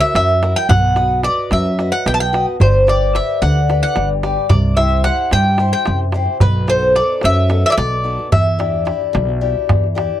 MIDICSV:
0, 0, Header, 1, 5, 480
1, 0, Start_track
1, 0, Tempo, 545455
1, 613, Time_signature, 7, 3, 24, 8
1, 8976, End_track
2, 0, Start_track
2, 0, Title_t, "Bouzouki"
2, 0, Program_c, 0, 25
2, 4, Note_on_c, 0, 76, 96
2, 120, Note_off_c, 0, 76, 0
2, 139, Note_on_c, 0, 76, 87
2, 471, Note_off_c, 0, 76, 0
2, 495, Note_on_c, 0, 79, 99
2, 606, Note_off_c, 0, 79, 0
2, 610, Note_on_c, 0, 78, 90
2, 1058, Note_off_c, 0, 78, 0
2, 1094, Note_on_c, 0, 74, 81
2, 1317, Note_off_c, 0, 74, 0
2, 1344, Note_on_c, 0, 76, 84
2, 1674, Note_off_c, 0, 76, 0
2, 1689, Note_on_c, 0, 78, 86
2, 1802, Note_off_c, 0, 78, 0
2, 1826, Note_on_c, 0, 79, 93
2, 1877, Note_off_c, 0, 79, 0
2, 1884, Note_on_c, 0, 81, 82
2, 1935, Note_off_c, 0, 81, 0
2, 1939, Note_on_c, 0, 79, 86
2, 2157, Note_off_c, 0, 79, 0
2, 2300, Note_on_c, 0, 72, 81
2, 2543, Note_off_c, 0, 72, 0
2, 2546, Note_on_c, 0, 74, 85
2, 2777, Note_on_c, 0, 76, 78
2, 2786, Note_off_c, 0, 74, 0
2, 2998, Note_off_c, 0, 76, 0
2, 3008, Note_on_c, 0, 78, 85
2, 3344, Note_off_c, 0, 78, 0
2, 3368, Note_on_c, 0, 78, 80
2, 3593, Note_off_c, 0, 78, 0
2, 3955, Note_on_c, 0, 74, 73
2, 4185, Note_off_c, 0, 74, 0
2, 4195, Note_on_c, 0, 76, 79
2, 4425, Note_off_c, 0, 76, 0
2, 4435, Note_on_c, 0, 78, 86
2, 4666, Note_off_c, 0, 78, 0
2, 4688, Note_on_c, 0, 79, 99
2, 5031, Note_off_c, 0, 79, 0
2, 5041, Note_on_c, 0, 79, 84
2, 5269, Note_off_c, 0, 79, 0
2, 5642, Note_on_c, 0, 71, 79
2, 5889, Note_off_c, 0, 71, 0
2, 5892, Note_on_c, 0, 72, 93
2, 6115, Note_off_c, 0, 72, 0
2, 6124, Note_on_c, 0, 74, 83
2, 6351, Note_off_c, 0, 74, 0
2, 6381, Note_on_c, 0, 76, 102
2, 6711, Note_off_c, 0, 76, 0
2, 6741, Note_on_c, 0, 76, 94
2, 6764, Note_off_c, 0, 76, 0
2, 6776, Note_on_c, 0, 74, 78
2, 6794, Note_on_c, 0, 76, 98
2, 6799, Note_off_c, 0, 74, 0
2, 6838, Note_off_c, 0, 76, 0
2, 6842, Note_on_c, 0, 74, 90
2, 7294, Note_off_c, 0, 74, 0
2, 7324, Note_on_c, 0, 76, 82
2, 8737, Note_off_c, 0, 76, 0
2, 8976, End_track
3, 0, Start_track
3, 0, Title_t, "Steel-string acoustic guitar"
3, 0, Program_c, 1, 25
3, 0, Note_on_c, 1, 49, 66
3, 0, Note_on_c, 1, 64, 44
3, 0, Note_on_c, 1, 66, 44
3, 0, Note_on_c, 1, 70, 57
3, 115, Note_off_c, 1, 49, 0
3, 134, Note_on_c, 1, 54, 64
3, 282, Note_off_c, 1, 64, 0
3, 282, Note_off_c, 1, 66, 0
3, 286, Note_off_c, 1, 70, 0
3, 374, Note_on_c, 1, 64, 46
3, 376, Note_on_c, 1, 66, 45
3, 384, Note_on_c, 1, 70, 43
3, 566, Note_off_c, 1, 64, 0
3, 568, Note_off_c, 1, 66, 0
3, 570, Note_off_c, 1, 70, 0
3, 599, Note_off_c, 1, 54, 0
3, 607, Note_on_c, 1, 59, 61
3, 846, Note_on_c, 1, 66, 47
3, 853, Note_on_c, 1, 71, 37
3, 854, Note_on_c, 1, 75, 53
3, 1075, Note_off_c, 1, 59, 0
3, 1087, Note_off_c, 1, 66, 0
3, 1091, Note_off_c, 1, 71, 0
3, 1094, Note_off_c, 1, 75, 0
3, 1097, Note_on_c, 1, 66, 45
3, 1100, Note_on_c, 1, 71, 43
3, 1109, Note_on_c, 1, 75, 45
3, 1337, Note_on_c, 1, 54, 65
3, 1479, Note_off_c, 1, 66, 0
3, 1482, Note_off_c, 1, 71, 0
3, 1484, Note_off_c, 1, 75, 0
3, 1577, Note_on_c, 1, 66, 47
3, 1585, Note_on_c, 1, 71, 38
3, 1588, Note_on_c, 1, 75, 51
3, 1800, Note_off_c, 1, 54, 0
3, 1814, Note_on_c, 1, 59, 65
3, 1960, Note_off_c, 1, 66, 0
3, 1961, Note_off_c, 1, 71, 0
3, 1965, Note_off_c, 1, 75, 0
3, 2048, Note_on_c, 1, 66, 47
3, 2054, Note_on_c, 1, 71, 39
3, 2063, Note_on_c, 1, 75, 46
3, 2242, Note_off_c, 1, 66, 0
3, 2246, Note_off_c, 1, 71, 0
3, 2248, Note_off_c, 1, 75, 0
3, 2278, Note_off_c, 1, 59, 0
3, 2300, Note_on_c, 1, 55, 59
3, 2526, Note_on_c, 1, 67, 44
3, 2532, Note_on_c, 1, 71, 36
3, 2533, Note_on_c, 1, 74, 49
3, 2759, Note_off_c, 1, 67, 0
3, 2761, Note_off_c, 1, 55, 0
3, 2764, Note_off_c, 1, 71, 0
3, 2765, Note_off_c, 1, 74, 0
3, 2769, Note_on_c, 1, 67, 46
3, 2772, Note_on_c, 1, 71, 45
3, 2779, Note_on_c, 1, 74, 44
3, 3012, Note_on_c, 1, 50, 69
3, 3154, Note_off_c, 1, 67, 0
3, 3157, Note_off_c, 1, 71, 0
3, 3158, Note_off_c, 1, 74, 0
3, 3248, Note_on_c, 1, 67, 48
3, 3253, Note_on_c, 1, 71, 42
3, 3259, Note_on_c, 1, 74, 43
3, 3477, Note_off_c, 1, 50, 0
3, 3488, Note_on_c, 1, 55, 60
3, 3633, Note_off_c, 1, 67, 0
3, 3637, Note_off_c, 1, 71, 0
3, 3638, Note_off_c, 1, 74, 0
3, 3724, Note_on_c, 1, 67, 49
3, 3732, Note_on_c, 1, 71, 38
3, 3734, Note_on_c, 1, 74, 51
3, 3920, Note_off_c, 1, 67, 0
3, 3922, Note_off_c, 1, 71, 0
3, 3925, Note_off_c, 1, 74, 0
3, 3955, Note_off_c, 1, 55, 0
3, 3965, Note_on_c, 1, 48, 61
3, 4190, Note_on_c, 1, 64, 43
3, 4196, Note_on_c, 1, 67, 36
3, 4201, Note_on_c, 1, 72, 54
3, 4432, Note_off_c, 1, 64, 0
3, 4433, Note_off_c, 1, 48, 0
3, 4437, Note_off_c, 1, 67, 0
3, 4437, Note_off_c, 1, 72, 0
3, 4443, Note_on_c, 1, 64, 43
3, 4446, Note_on_c, 1, 67, 44
3, 4450, Note_on_c, 1, 72, 43
3, 4684, Note_on_c, 1, 55, 70
3, 4830, Note_off_c, 1, 64, 0
3, 4833, Note_off_c, 1, 67, 0
3, 4833, Note_off_c, 1, 72, 0
3, 4921, Note_on_c, 1, 64, 49
3, 4929, Note_on_c, 1, 72, 58
3, 4930, Note_on_c, 1, 67, 41
3, 5153, Note_off_c, 1, 55, 0
3, 5164, Note_on_c, 1, 48, 60
3, 5310, Note_off_c, 1, 64, 0
3, 5312, Note_off_c, 1, 67, 0
3, 5313, Note_off_c, 1, 72, 0
3, 5404, Note_on_c, 1, 64, 48
3, 5410, Note_on_c, 1, 67, 45
3, 5417, Note_on_c, 1, 72, 48
3, 5599, Note_off_c, 1, 64, 0
3, 5603, Note_off_c, 1, 67, 0
3, 5604, Note_off_c, 1, 72, 0
3, 5633, Note_off_c, 1, 48, 0
3, 5649, Note_on_c, 1, 47, 60
3, 5874, Note_on_c, 1, 59, 44
3, 5878, Note_on_c, 1, 63, 37
3, 5886, Note_on_c, 1, 69, 52
3, 6114, Note_off_c, 1, 59, 0
3, 6116, Note_off_c, 1, 47, 0
3, 6118, Note_off_c, 1, 63, 0
3, 6123, Note_off_c, 1, 69, 0
3, 6125, Note_on_c, 1, 59, 48
3, 6129, Note_on_c, 1, 63, 42
3, 6134, Note_on_c, 1, 69, 50
3, 6360, Note_on_c, 1, 54, 69
3, 6512, Note_off_c, 1, 59, 0
3, 6514, Note_off_c, 1, 63, 0
3, 6517, Note_off_c, 1, 69, 0
3, 6594, Note_on_c, 1, 59, 49
3, 6602, Note_on_c, 1, 69, 54
3, 6603, Note_on_c, 1, 63, 41
3, 6832, Note_off_c, 1, 54, 0
3, 6850, Note_on_c, 1, 47, 60
3, 6987, Note_off_c, 1, 59, 0
3, 6989, Note_off_c, 1, 63, 0
3, 6991, Note_off_c, 1, 69, 0
3, 7073, Note_on_c, 1, 59, 49
3, 7077, Note_on_c, 1, 63, 42
3, 7087, Note_on_c, 1, 69, 46
3, 7274, Note_off_c, 1, 63, 0
3, 7276, Note_off_c, 1, 59, 0
3, 7276, Note_off_c, 1, 69, 0
3, 7317, Note_off_c, 1, 47, 0
3, 7321, Note_on_c, 1, 52, 55
3, 7556, Note_on_c, 1, 62, 44
3, 7562, Note_on_c, 1, 67, 51
3, 7563, Note_on_c, 1, 64, 34
3, 7779, Note_off_c, 1, 62, 0
3, 7783, Note_off_c, 1, 64, 0
3, 7789, Note_on_c, 1, 62, 45
3, 7791, Note_off_c, 1, 67, 0
3, 7793, Note_off_c, 1, 52, 0
3, 7794, Note_on_c, 1, 64, 44
3, 7802, Note_on_c, 1, 67, 50
3, 8035, Note_on_c, 1, 47, 70
3, 8184, Note_off_c, 1, 62, 0
3, 8187, Note_off_c, 1, 64, 0
3, 8192, Note_off_c, 1, 67, 0
3, 8282, Note_on_c, 1, 62, 50
3, 8286, Note_on_c, 1, 64, 36
3, 8287, Note_on_c, 1, 67, 56
3, 8512, Note_off_c, 1, 47, 0
3, 8531, Note_on_c, 1, 52, 60
3, 8673, Note_off_c, 1, 64, 0
3, 8674, Note_off_c, 1, 62, 0
3, 8675, Note_off_c, 1, 67, 0
3, 8757, Note_on_c, 1, 62, 48
3, 8765, Note_on_c, 1, 67, 57
3, 8768, Note_on_c, 1, 64, 41
3, 8958, Note_off_c, 1, 62, 0
3, 8962, Note_off_c, 1, 64, 0
3, 8964, Note_off_c, 1, 67, 0
3, 8976, Note_off_c, 1, 52, 0
3, 8976, End_track
4, 0, Start_track
4, 0, Title_t, "Upright bass"
4, 0, Program_c, 2, 32
4, 128, Note_on_c, 2, 42, 85
4, 466, Note_off_c, 2, 42, 0
4, 606, Note_on_c, 2, 35, 95
4, 1112, Note_off_c, 2, 35, 0
4, 1334, Note_on_c, 2, 42, 97
4, 1669, Note_off_c, 2, 42, 0
4, 1812, Note_on_c, 2, 35, 81
4, 2148, Note_off_c, 2, 35, 0
4, 2288, Note_on_c, 2, 31, 86
4, 2793, Note_off_c, 2, 31, 0
4, 3008, Note_on_c, 2, 38, 95
4, 3345, Note_off_c, 2, 38, 0
4, 3491, Note_on_c, 2, 31, 79
4, 3827, Note_off_c, 2, 31, 0
4, 3963, Note_on_c, 2, 36, 93
4, 4470, Note_off_c, 2, 36, 0
4, 4684, Note_on_c, 2, 43, 97
4, 5022, Note_off_c, 2, 43, 0
4, 5171, Note_on_c, 2, 42, 82
4, 5507, Note_off_c, 2, 42, 0
4, 5649, Note_on_c, 2, 35, 93
4, 6154, Note_off_c, 2, 35, 0
4, 6372, Note_on_c, 2, 42, 106
4, 6708, Note_off_c, 2, 42, 0
4, 6843, Note_on_c, 2, 35, 84
4, 7183, Note_off_c, 2, 35, 0
4, 7327, Note_on_c, 2, 40, 90
4, 7834, Note_off_c, 2, 40, 0
4, 8049, Note_on_c, 2, 35, 101
4, 8388, Note_off_c, 2, 35, 0
4, 8535, Note_on_c, 2, 40, 78
4, 8873, Note_off_c, 2, 40, 0
4, 8976, End_track
5, 0, Start_track
5, 0, Title_t, "Darbuka"
5, 135, Note_on_c, 9, 63, 79
5, 223, Note_off_c, 9, 63, 0
5, 376, Note_on_c, 9, 63, 73
5, 464, Note_off_c, 9, 63, 0
5, 499, Note_on_c, 9, 63, 27
5, 587, Note_off_c, 9, 63, 0
5, 620, Note_on_c, 9, 64, 100
5, 708, Note_off_c, 9, 64, 0
5, 845, Note_on_c, 9, 63, 72
5, 933, Note_off_c, 9, 63, 0
5, 1087, Note_on_c, 9, 63, 70
5, 1175, Note_off_c, 9, 63, 0
5, 1217, Note_on_c, 9, 63, 25
5, 1305, Note_off_c, 9, 63, 0
5, 1328, Note_on_c, 9, 63, 66
5, 1416, Note_off_c, 9, 63, 0
5, 1456, Note_on_c, 9, 63, 28
5, 1544, Note_off_c, 9, 63, 0
5, 1574, Note_on_c, 9, 63, 64
5, 1662, Note_off_c, 9, 63, 0
5, 1816, Note_on_c, 9, 63, 69
5, 1904, Note_off_c, 9, 63, 0
5, 1940, Note_on_c, 9, 63, 25
5, 2028, Note_off_c, 9, 63, 0
5, 2062, Note_on_c, 9, 63, 67
5, 2150, Note_off_c, 9, 63, 0
5, 2178, Note_on_c, 9, 63, 23
5, 2266, Note_off_c, 9, 63, 0
5, 2295, Note_on_c, 9, 64, 86
5, 2383, Note_off_c, 9, 64, 0
5, 2535, Note_on_c, 9, 63, 59
5, 2623, Note_off_c, 9, 63, 0
5, 2650, Note_on_c, 9, 63, 23
5, 2738, Note_off_c, 9, 63, 0
5, 2772, Note_on_c, 9, 63, 65
5, 2860, Note_off_c, 9, 63, 0
5, 3014, Note_on_c, 9, 63, 58
5, 3102, Note_off_c, 9, 63, 0
5, 3130, Note_on_c, 9, 63, 25
5, 3218, Note_off_c, 9, 63, 0
5, 3254, Note_on_c, 9, 63, 64
5, 3342, Note_off_c, 9, 63, 0
5, 3482, Note_on_c, 9, 63, 70
5, 3570, Note_off_c, 9, 63, 0
5, 3726, Note_on_c, 9, 63, 66
5, 3814, Note_off_c, 9, 63, 0
5, 3843, Note_on_c, 9, 63, 25
5, 3931, Note_off_c, 9, 63, 0
5, 3959, Note_on_c, 9, 64, 95
5, 4047, Note_off_c, 9, 64, 0
5, 4200, Note_on_c, 9, 63, 67
5, 4288, Note_off_c, 9, 63, 0
5, 4317, Note_on_c, 9, 63, 24
5, 4405, Note_off_c, 9, 63, 0
5, 4438, Note_on_c, 9, 63, 66
5, 4526, Note_off_c, 9, 63, 0
5, 4676, Note_on_c, 9, 63, 59
5, 4764, Note_off_c, 9, 63, 0
5, 4791, Note_on_c, 9, 63, 27
5, 4879, Note_off_c, 9, 63, 0
5, 4911, Note_on_c, 9, 63, 66
5, 4999, Note_off_c, 9, 63, 0
5, 5153, Note_on_c, 9, 63, 70
5, 5241, Note_off_c, 9, 63, 0
5, 5389, Note_on_c, 9, 63, 63
5, 5477, Note_off_c, 9, 63, 0
5, 5506, Note_on_c, 9, 63, 25
5, 5594, Note_off_c, 9, 63, 0
5, 5636, Note_on_c, 9, 64, 84
5, 5724, Note_off_c, 9, 64, 0
5, 5879, Note_on_c, 9, 63, 64
5, 5967, Note_off_c, 9, 63, 0
5, 6000, Note_on_c, 9, 63, 22
5, 6088, Note_off_c, 9, 63, 0
5, 6122, Note_on_c, 9, 63, 63
5, 6210, Note_off_c, 9, 63, 0
5, 6349, Note_on_c, 9, 63, 63
5, 6437, Note_off_c, 9, 63, 0
5, 6481, Note_on_c, 9, 63, 26
5, 6569, Note_off_c, 9, 63, 0
5, 6599, Note_on_c, 9, 63, 67
5, 6687, Note_off_c, 9, 63, 0
5, 6848, Note_on_c, 9, 63, 64
5, 6936, Note_off_c, 9, 63, 0
5, 7208, Note_on_c, 9, 63, 25
5, 7296, Note_off_c, 9, 63, 0
5, 7324, Note_on_c, 9, 64, 81
5, 7412, Note_off_c, 9, 64, 0
5, 7448, Note_on_c, 9, 63, 25
5, 7536, Note_off_c, 9, 63, 0
5, 7567, Note_on_c, 9, 63, 65
5, 7655, Note_off_c, 9, 63, 0
5, 7687, Note_on_c, 9, 63, 25
5, 7775, Note_off_c, 9, 63, 0
5, 7805, Note_on_c, 9, 63, 68
5, 7893, Note_off_c, 9, 63, 0
5, 7930, Note_on_c, 9, 63, 25
5, 8018, Note_off_c, 9, 63, 0
5, 8050, Note_on_c, 9, 63, 64
5, 8138, Note_off_c, 9, 63, 0
5, 8175, Note_on_c, 9, 63, 30
5, 8263, Note_off_c, 9, 63, 0
5, 8530, Note_on_c, 9, 63, 76
5, 8530, Note_on_c, 9, 64, 71
5, 8618, Note_off_c, 9, 63, 0
5, 8618, Note_off_c, 9, 64, 0
5, 8657, Note_on_c, 9, 63, 27
5, 8745, Note_off_c, 9, 63, 0
5, 8780, Note_on_c, 9, 63, 71
5, 8868, Note_off_c, 9, 63, 0
5, 8976, End_track
0, 0, End_of_file